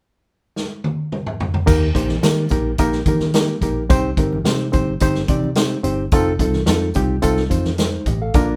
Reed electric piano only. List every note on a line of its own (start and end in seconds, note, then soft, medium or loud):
1.66 1.86 A#3 loud
1.66 1.87 D#4 medium
1.66 1.87 G4 medium
1.66 1.87 A#4 loud
1.95 2.15 A#3 medium
1.95 2.15 D#4 medium
1.95 2.15 G4 medium
1.95 2.15 C5 medium
2.23 2.43 A#3 medium
2.23 2.43 D#4 medium
2.23 2.43 G4 medium
2.23 2.43 A#4 medium
2.50 2.70 A#3 medium
2.50 2.70 D#4 medium
2.50 2.70 G4 medium
2.50 2.71 A#4 medium
2.79 2.98 A#3 medium
2.79 2.99 D#4 medium
2.79 2.99 G4 medium
2.79 2.99 A#4 loud
3.08 3.27 A#3 medium
3.08 3.27 D#4 medium
3.08 3.27 G4 medium
3.08 3.27 A#4 medium
3.35 3.54 A#3 medium
3.35 3.54 D#4 medium
3.35 3.54 G4 medium
3.35 3.55 A#4 medium
3.62 3.82 A#3 medium
3.62 3.82 D#4 medium
3.62 3.82 G4 medium
3.62 3.82 A#4 medium
3.90 4.09 C4 loud
3.90 4.10 D#4 medium
3.90 4.10 G4 medium
3.90 4.10 C5 loud
4.18 4.37 C4 medium
4.18 4.37 D#4 medium
4.18 4.38 G4 medium
4.18 4.38 A#4 medium
4.46 4.66 C4 medium
4.46 4.66 D#4 medium
4.46 4.66 G4 medium
4.46 4.66 C5 medium
4.72 4.92 C4 medium
4.72 4.92 D#4 medium
4.72 4.93 G4 medium
4.72 4.93 C5 medium
5.01 5.21 C4 medium
5.01 5.21 D#4 medium
5.01 5.21 G4 medium
5.01 5.21 C5 loud
5.29 5.49 C4 medium
5.29 5.49 D#4 medium
5.29 5.49 G4 medium
5.29 5.49 D5 medium
5.56 5.76 C4 medium
5.56 5.76 D#4 medium
5.56 5.77 G4 medium
5.56 5.77 C5 medium
5.83 6.04 C4 medium
5.83 6.04 D#4 medium
5.83 6.04 G4 medium
5.83 6.04 C5 medium
6.13 6.32 C4 loud
6.13 6.32 D#4 loud
6.13 6.32 F4 loud
6.13 6.32 A4 loud
6.40 6.60 C4 medium
6.40 6.60 D#4 medium
6.40 6.60 F4 medium
6.40 6.60 A4 medium
6.69 6.88 C4 medium
6.69 6.88 D#4 medium
6.69 6.88 F4 medium
6.69 6.88 A4 medium
6.95 7.15 C4 medium
6.95 7.15 D#4 medium
6.95 7.15 F4 medium
6.95 7.15 G4 medium
7.22 7.42 C4 medium
7.22 7.42 D#4 medium
7.22 7.43 F4 medium
7.22 7.43 A4 loud
7.50 7.70 C4 medium
7.50 7.70 D#4 medium
7.50 7.70 F4 medium
7.50 7.71 C5 medium
7.79 8.06 D#4 soft
7.79 8.05 C5 medium
8.08 8.20 G4 medium
8.08 8.20 D#5 medium
8.21 8.47 A4 soft
8.21 8.47 F5 medium
8.35 8.54 A#3 loud
8.35 8.54 D4 loud
8.35 8.55 F4 medium
8.35 8.55 A#4 loud